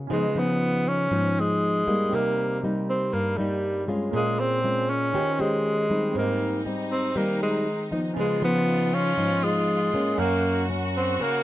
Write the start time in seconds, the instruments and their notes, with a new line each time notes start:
Already playing: grand piano F#4 G#4 A#4 F5
0.07 nylon-string guitar C#3 F3 B3 D#4, grand piano C#4 F4
0.11 tenor saxophone G#3, grand piano B4 D#5
0.35 nylon-string guitar F3 B3 D#4, tenor saxophone B3
0.88 tenor saxophone C#4
1.11 nylon-string guitar G#2 F3 B3 D#4
1.40 tenor saxophone G#3
1.87 nylon-string guitar G3 A#3 D#4
2.10 nylon-string guitar C3, grand piano C4 G4 A#4
2.15 tenor saxophone A#3, grand piano D#5
2.63 nylon-string guitar G3 A#3 D#4
2.89 tenor saxophone C4
3.13 nylon-string guitar G2, tenor saxophone A#3
3.37 tenor saxophone G3, nylon-string guitar G3 A#3 D#4
3.88 nylon-string guitar G#3 C#4 F4
4.11 nylon-string guitar A#2, tenor saxophone G#3, grand piano A#3 G#4
4.15 grand piano A#4 F5
4.39 tenor saxophone C4
4.64 nylon-string guitar G#3 C#4 F4
4.90 tenor saxophone C#4
5.12 nylon-string guitar D#3 C#4 G4 C5, grand piano C#4 F4 G4
5.16 grand piano C5 D#5
5.39 tenor saxophone G#3, nylon-string guitar C#4 G4 C5
5.90 nylon-string guitar G3 C4 D#4
6.12 nylon-string guitar G#2, grand piano C4 G4, violin section D#4
6.16 tenor saxophone A#3, grand piano C5 D#5
6.65 nylon-string guitar G3 C4 D#4
6.92 tenor saxophone C4
7.15 nylon-string guitar D#3 G3 C4 D#4, tenor saxophone A#3
7.43 tenor saxophone G#3
7.91 nylon-string guitar F3 B3 D#4
8.14 nylon-string guitar C#3, grand piano C#4 F4, violin section F4
8.18 tenor saxophone G#3, grand piano B4 D#5
8.42 nylon-string guitar F3 B3 D#4, tenor saxophone B3
8.94 tenor saxophone C#4
9.17 nylon-string guitar G#2 F3 B3 D#4
9.44 tenor saxophone G#3
9.94 nylon-string guitar A#3 C#4
10.15 nylon-string guitar F#2, tenor saxophone A#3, grand piano C#4 F#5, violin section F#4
10.19 grand piano A#4 F5
10.69 nylon-string guitar A#3 C#4
10.96 tenor saxophone C4
11.19 nylon-string guitar C#3 A#3 C#4, tenor saxophone A#3